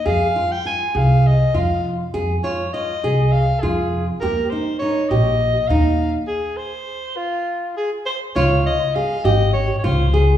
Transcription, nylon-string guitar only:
X:1
M:7/8
L:1/8
Q:1/4=101
K:Fm
V:1 name="Nylon-string guitar"
A F F A2 F2 | A F F A2 F2 | G E E G2 E2 | z6 z |
F2 A G2 F A |]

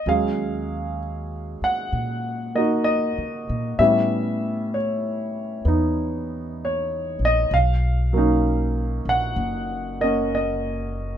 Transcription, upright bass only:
X:1
M:4/4
L:1/8
Q:"Swing" 1/4=64
K:Ebm
V:1 name="Upright bass" clef=bass
E,,3 z B,,2- (3B,, D, B,, | =A,,4 =E,,3 B,,, | =B,,,3 ^A,,, ^F,,,4 |]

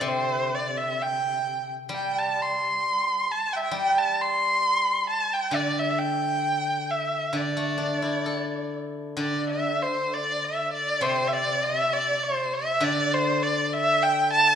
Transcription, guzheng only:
X:1
M:2/4
L:1/16
Q:1/4=66
K:none
V:1 name="Guzheng" clef=bass
[C,D,]8 | G,8 | G,8 | D,8 |
D, A, D E A4 | D,8 | C,8 | D,8 |]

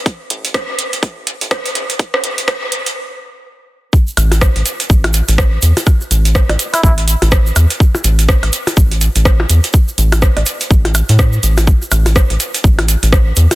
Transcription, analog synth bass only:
X:1
M:4/4
L:1/16
Q:"Swing 16ths" 1/4=124
K:Cmix
V:1 name="Analog synth bass" clef=bass
z2 A,,,3 A,,, z2 A,,,3 A,,,3 E,, z | z2 A,,,3 A,,, z8 z2 | z2 A,,,3 A,,, z2 A,,,3 A,,,3 E,, z | z2 A,,,3 A,,, z2 A,,,3 A,,,3 E,, z |
z2 A,,,3 A,,, z2 A,,,3 A,,,3 E,, z | z2 A,,,3 A,,, z2 A,,,3 A,,3 A,,,2- | A,,, z A,,,3 A,,, z2 A,,,3 A,,,3 E,, z |]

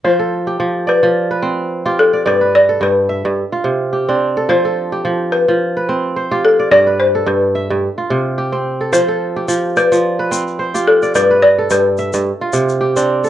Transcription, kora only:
X:1
M:4/4
L:1/16
Q:"Swing 16ths" 1/4=108
K:Flyd
V:1 name="Kora"
c A2 G3 d3 B3 z G2 d | d B2 A3 e3 F3 G D2 A | c A2 G3 z3 B3 c G2 d | d B2 A3 e3 F3 G3 A |
c A2 G3 d3 B3 c G2 d | d B2 A3 e3 F3 G D2 A |]
V:2 name="Kora" clef=bass
F,2 z2 F,2 z F,2 z C2 z F2 z | G,,2 z2 G,,2 z G,, z2 C,2 z C2 z | F,2 z2 F,2 z F,2 z C2 z F2 z | G,,2 z2 G,,2 z G,, z2 C,2 z C2 z |
F,2 z2 F,2 z F,2 z C2 z F2 z | G,,2 z2 G,,2 z G,, z2 C,2 z C2 z |]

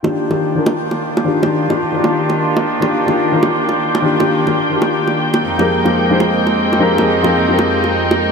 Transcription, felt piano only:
X:1
M:4/4
L:1/16
Q:1/4=173
K:Eb
V:1 name="Felt piano"
[E,DFG]3 [E,DFG]3 [E,DFB] z6 z [E,DFG]2 | [E,DFG]3 [E,DFG] z2 [E,DFG]8- [E,DFG]2 | [E,DFG]3 [E,DFG]3 [E,DFB] z6 z [E,DFG]2 | [E,DFG]3 [E,DFG] z2 [E,DFG]8 z2 |
[F,EGAB]3 [F,EGAB]3 [F,EGAc] z6 z [F,EGAB]2 | [F,EGAB]3 [F,EGAB] z2 [F,EGAB]8- [F,EGAB]2 |]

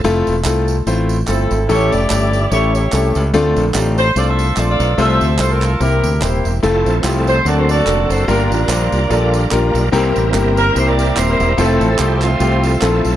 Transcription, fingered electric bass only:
X:1
M:4/4
L:1/8
Q:"Swing" 1/4=146
K:F
V:1 name="Fingered electric bass" clef=bass
F,,, E,,, C,,2 A,,,2 G,,, _A,,, | A,,, F,,, G,,,2 A,,,2 C,, ^C,, | D,, B,,, A,,,2 C,,2 B,,, =B,,, | C,, D,, C,,2 C,, D,, _E,,, =E,,, |
F,,, B,,, C,,2 D,,2 F,,, ^F,,, | G,,, A,,, B,,, C,, B,,,2 B,,, =B,,, | C,, A,,, G,,,2 C,,2 _E,,, =E,,, | F,,, A,,, C,,2 C,,2 B,,, =B,,, |]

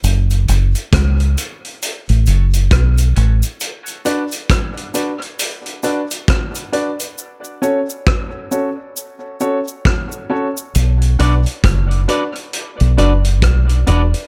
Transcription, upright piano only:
X:1
M:4/4
L:1/16
Q:"Swing 16ths" 1/4=67
K:Bm
V:1 name="Upright piano"
z2 [CFAc] z3 [CFAc] z3 [CFAc] z3 [CFAc] z | z2 [DFBd] z3 [DFBd] z3 [DFBd] z3 [DFBd] [Bd] | z2 [CFAc] z3 [CFAc] z3 [CFAc] z3 [CFAc] z | z2 [DFBd] z3 [DFBd] z3 [DFBd] z3 [DFBd] [Bd] |]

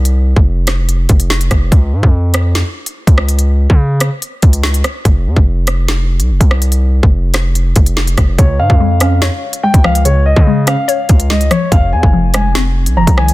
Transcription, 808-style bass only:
X:1
M:4/4
L:1/16
Q:1/4=144
K:Fm
V:1 name="808-style bass" clef=bass
C,,3 F,,,6- F,,, F,,,4 F,,,2 | D,,2 A,, F,,6 z4 D,,3- | D,,3 D,4 z3 D,,4 z2 | F,,,2 F,, F,,,8 C,, F,,, C,,3- |
C,,3 F,,,6- F,,, F,,,4 F,,,2 | D,,2 A,, F,,6 z4 D,,3- | D,,3 D,4 z3 D,,4 z2 | F,,,2 F,, F,,,8 C,, F,,, C,,3 |]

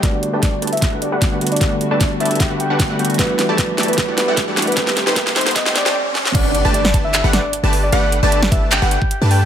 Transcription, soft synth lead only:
X:1
M:4/4
L:1/16
Q:1/4=152
K:G
V:1 name="Soft synth lead"
d2 z2 d2 z e2 z d2 z3 d- | d z2 d2 z e2 g z g2 z2 g z | B2 z2 B2 z B2 z B2 z3 B- | B z2 B2 z c z _e z d2 z4 |
d2 z2 d2 z e2 z d2 z3 d- | d z2 d2 z e z g z g2 z2 g z |]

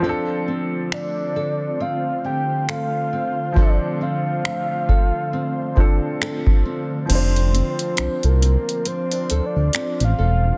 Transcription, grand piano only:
X:1
M:4/4
L:1/8
Q:"Swing 16ths" 1/4=68
K:F
V:1 name="Grand piano"
[F,CDA]8 | [F,CDA]4- [F,CDA] [F,CDA]3 | [F,CDc]8 |]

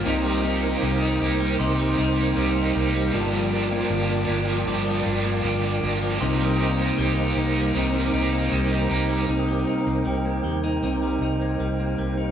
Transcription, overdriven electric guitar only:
X:1
M:4/4
L:1/8
Q:1/4=78
K:Cm
V:1 name="Overdriven electric guitar"
[C,E,B,EG] [B,EG] [E,B,EG] [B,EG] [C,E,B,EG] [B,EG] [E,B,EG] [B,EG] | [G,,D,F,B,DG] [F,B,DG] [F,B,DG] [F,B,DG] [G,,D,F,B,DG] [F,B,DG] [F,B,DG] [F,B,DG] | [C,E,B,EG] [B,EG] [E,B,EG] [B,EG] [C,E,B,EG] [B,EG] [E,B,EG] [B,EG] | z8 |]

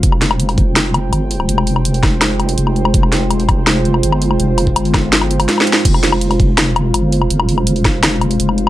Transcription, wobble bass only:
X:1
M:4/4
L:1/8
Q:1/4=165
K:Fm
V:1 name="Wobble bass" clef=bass
F,,,6 G,,,2 | F,,,6 F,,,2 | F,,,6 G,,,2 | F,,,2 G,,,4 z2 |
F,,,6 G,,,2 | F,,,6 F,,,2 |]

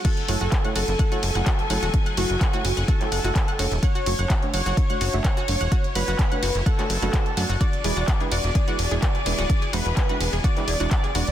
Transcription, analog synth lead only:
X:1
M:4/4
L:1/8
Q:1/4=127
K:F#m
V:1 name="Analog synth lead"
A3 A3 A2- | A F3 A4 | c3 c3 c2- | c B3 A4 |
d3 d3 d2- | d B3 d4 |]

